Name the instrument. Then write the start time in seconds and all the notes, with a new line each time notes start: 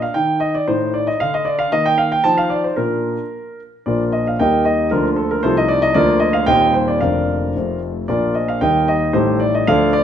grand piano
Already playing: D4
0.02 F5
0.14 D#3 D#4 G5
0.40 D#5
0.55 D5
0.67 A2 D#4 C5
0.94 D5
1.07 D#5
1.20 D3 D4 F5
1.34 D#5
1.45 D5
1.59 F5
1.72 D#3 A#3 D#5
1.86 G5
1.98 F5
2.12 G5
2.24 F3 D#4 A5
2.37 F5
2.50 D5
2.64 C5
2.76 A#2 D4 F4 A#4
3.86 A#1 A#2 A#3 D4 F4 A#4 D5
4.12 D#5
4.27 F5
4.40 D#2 D#3 G3 A#3 G4 A#4 D#5 G5
4.65 D#5
4.91 D2 D3 F3 A#3 D4 F4 A#4
5.16 A4
5.31 A#4
5.43 C2 C3 F3 A3 D#4 F4 A4 C5
5.57 D#5
5.68 D5
5.82 D#5
5.94 D2 D3 F3 A#3 D4 F4 A#4 D5
6.20 D#5
6.33 F5
6.46 D#1 D#2 D#3 G3 C4 C5 D#5 G5
6.74 C5
6.88 D5
7.01 F1 F2 D3 A#3 D4 A#4 D5 F5
7.56 F1 F2 F3 A3 C4
8.08 A#1 A#2 F3 A#3 D4 F4 A#4 D5
8.35 D#5
8.48 F5
8.61 D#2 D#3 G3 A#3 D#4 A#4 D#5 G5
8.88 D#5
9.13 A1 A2 G3 A3 D#4 G4 A4 C5
9.40 D5
9.55 D#5
9.67 D2 D3 F3 A3 D4 A4 D5 F5
9.93 D5